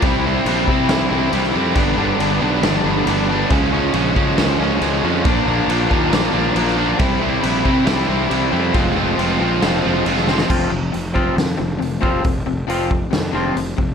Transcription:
<<
  \new Staff \with { instrumentName = "Clean electric guitar" } { \time 4/4 \key f \minor \tempo 4 = 138 r1 | r1 | r1 | r1 |
r1 | r1 | <f c' f'>8 <f c'>8 <f c'>8 <f c' f'>8 <f c'>8 <f c'>8 <f c'>8 <f c' f'>8 | <f c'>8 <f c'>8 <f c' f'>8 <f c'>8 <f c'>8 <f c' f'>8 <f c'>8 <f c'>8 | }
  \new Staff \with { instrumentName = "Overdriven electric guitar" } { \clef bass \time 4/4 \key f \minor <c g c' e'>8 <c g c' e'>8 <c g c' e'>8 <c g c' e'>8 <c g c' e'>8 <c g c' e'>8 <c g c' e'>8 <c g c' e'>8 | <g, d g b d'>8 <g, d g b d'>8 <g, d g b d'>8 <g, d g b d'>8 <g, d g b d'>8 <g, d g b d'>8 <g, d g b d'>8 <g, d g b d'>8 | <des f aes des'>8 <des f aes des'>8 <des f aes des'>8 <des f aes des'>8 <des f aes des'>8 <des f aes des'>8 <des f aes des'>8 <des f aes des'>8 | <bes, f bes d'>8 <bes, f bes d'>8 <bes, f bes d'>8 <bes, f bes d'>8 <bes, f bes d'>8 <bes, f bes d'>8 <bes, f bes d'>8 <bes, f bes d'>8 |
<c g c' e'>8 <c g c' e'>8 <c g c' e'>8 <c g c' e'>8 <c g c' e'>8 <c g c' e'>8 <c g c' e'>8 <c g c' e'>8 | <f aes c' f'>8 <f aes c' f'>8 <f aes c' f'>8 <f aes c' f'>8 <f aes c' f'>8 <f aes c' f'>8 <f aes c' f'>8 <f aes c' f'>8 | r1 | r1 | }
  \new Staff \with { instrumentName = "Overdriven electric guitar" } { \clef bass \time 4/4 \key f \minor <c g c' e'>8 <c g c' e'>8 <c g c' e'>8 <c g c' e'>8 <c g c' e'>8 <c g c' e'>8 <c g c' e'>8 <c g c' e'>8 | <g, d g b d'>8 <g, d g b d'>8 <g, d g b d'>8 <g, d g b d'>8 <g, d g b d'>8 <g, d g b d'>8 <g, d g b d'>8 <g, d g b d'>8 | <des f aes des'>8 <des f aes des'>8 <des f aes des'>8 <des f aes des'>8 <des f aes des'>8 <des f aes des'>8 <des f aes des'>8 <des f aes des'>8 | <bes, f bes d'>8 <bes, f bes d'>8 <bes, f bes d'>8 <bes, f bes d'>8 <bes, f bes d'>8 <bes, f bes d'>8 <bes, f bes d'>8 <bes, f bes d'>8 |
<c g c' e'>8 <c g c' e'>8 <c g c' e'>8 <c g c' e'>8 <c g c' e'>8 <c g c' e'>8 <c g c' e'>8 <c g c' e'>8 | <f aes c' f'>8 <f aes c' f'>8 <f aes c' f'>8 <f aes c' f'>8 <f aes c' f'>8 <f aes c' f'>8 <f aes c' f'>8 <f aes c' f'>8 | <f, c f>8 <f, c>8 <f, c>8 <f, c f>8 <f, c>8 <f, c>8 <f, c>8 <f, c f>8 | <f, c>8 <f, c>8 <f, c f>8 <f, c>8 <f, c>8 <f, c f>8 <f, c>8 <f, c>8 | }
  \new Staff \with { instrumentName = "Fingered electric bass" } { \clef bass \time 4/4 \key f \minor c,4 bes,,8 c8 c,8 c,8 c,8 f,8 | g,,8 g,,8 g,,8 b,,8 g,,8 g,,8 g,,4 | des,4 bes,,8 des8 des,8 des,8 des,8 f,8 | bes,,8 bes,,8 bes,,8 ees,8 bes,,8 bes,,8 bes,,4 |
c,4 bes,,8 c8 c,8 c,8 c,8 f,8 | f,,8 f,,8 f,,8 bes,,8 f,,8 f,,8 f,,4 | f,,8 f,,8 f,,4 f,8 f,,8 f,,8 f,,8 | f,,8 f,,8 f,,4 f,8 f,,8 f,,8 f,,8 | }
  \new DrumStaff \with { instrumentName = "Drums" } \drummode { \time 4/4 <cymc bd>4 cymc8 bd8 <cymc sn>4 cymc16 sn8. | <cymc bd>4 cymc4 <cymc sn>4 cymc4 | <cymc bd>4 cymc8 bd8 <cymc sn>4 cymc4 | <cymc bd>4 cymc8 bd8 <cymc sn>4 cymc16 sn8. |
<cymc bd>4 cymc8 bd8 <cymc sn>4 cymc4 | <cymc bd>4 cymc4 <cymc sn>4 cymc16 sn16 sn16 sn16 | <cymc bd>4 hho8 bd8 <hho sn>4 hho8 bd8 | <hho bd>4 hho8 bd8 <hho sn>4 hho8 bd8 | }
>>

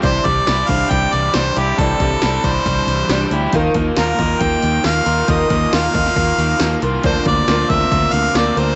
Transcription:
<<
  \new Staff \with { instrumentName = "Harmonica" } { \time 4/4 \key c \mixolydian \tempo 4 = 137 c''8 d''4 f''8 g''8 d''8 c''8 g'8 | a'4. c''2 r8 | r4 bes'4 g''4 f''4 | ees''4 f''2~ f''8 r8 |
c''8 d''4 e''4 f''8 d''8 c''8 | }
  \new Staff \with { instrumentName = "Electric slide guitar" } { \time 4/4 \key c \mixolydian r1 | r2. d'8 g'8 | ees'8. r2. r16 | r1 |
r1 | }
  \new Staff \with { instrumentName = "Twelve-string acoustic guitar" } { \time 4/4 \key c \mixolydian <c e g c' d' g'>8 <g c' d' g'>8 <g c' d' g'>8 <g c' d' g'>4. <g c' d' g'>8 <g c' d' g'>8 | <c e g c' d' g'>8 <g c' d' g'>8 <g c' d' g'>8 <g c' d' g'>4. <g c' d' g'>8 <g c' d' g'>8 | <ees f bes f' bes'>8 <bes f' bes'>8 <f bes f' bes'>8 <bes f' bes'>4. <f bes f' bes'>8 <bes f' bes'>8 | <ees f bes f' bes'>8 <bes f' bes'>8 <f bes f' bes'>8 <bes f' bes'>4. <f bes f' bes'>8 <bes f' bes'>8 |
<d f c' d' bes'>8 <c' d' bes'>8 <f c' d' bes'>8 <c' d' bes'>4. <f c' d' bes'>8 <c' d' bes'>8 | }
  \new Staff \with { instrumentName = "Overdriven electric guitar" } { \time 4/4 \key c \mixolydian c8 g8 e'8 d'8 g8 e8 g8 e'8 | c8 g8 e'8 d'8 g8 e8 g8 e'8 | ees8 bes8 f'8 ees'8 bes8 ees8 bes8 f'8 | ees8 bes8 f'8 ees'8 bes8 ees8 bes8 f'8 |
d8 bes8 f'8 c'8 bes8 d8 bes8 f'8 | }
  \new Staff \with { instrumentName = "Fingered electric bass" } { \clef bass \time 4/4 \key c \mixolydian c,8 c,8 c,8 c,8 c,8 c,8 c,8 c,8 | c,8 c,8 c,8 c,8 c,8 c,8 c,8 d,8 | ees,8 ees,8 ees,8 ees,8 ees,8 ees,8 ees,8 ees,8 | ees,8 ees,8 ees,8 ees,8 ees,8 ees,8 ees,8 c,8 |
d,8 d,8 d,8 d,8 d,8 d,8 d,8 d,8 | }
  \new DrumStaff \with { instrumentName = "Drums" } \drummode { \time 4/4 <hho bd>8 <hho bd>8 <hho sn>8 <hho bd>8 <hho bd>8 hho8 <hho sn>8 hho8 | <hho bd>8 <hho bd>8 <hho sn>8 <hho bd>8 <hho bd>8 hho8 <hho sn>8 hho8 | <hho bd>8 <hho bd>8 <hho sn>8 <hho bd>8 <hho bd>8 hho8 <hho sn>8 hho8 | <hho bd>8 <hho bd>8 <hho sn>8 <hho bd>16 sn16 <hho bd>8 hho8 <hho sn>8 hho8 |
<hho bd>8 <hho bd>8 <hho sn>8 <hho bd>16 sn16 <hho bd>8 hho8 <hho sn>8 hho8 | }
>>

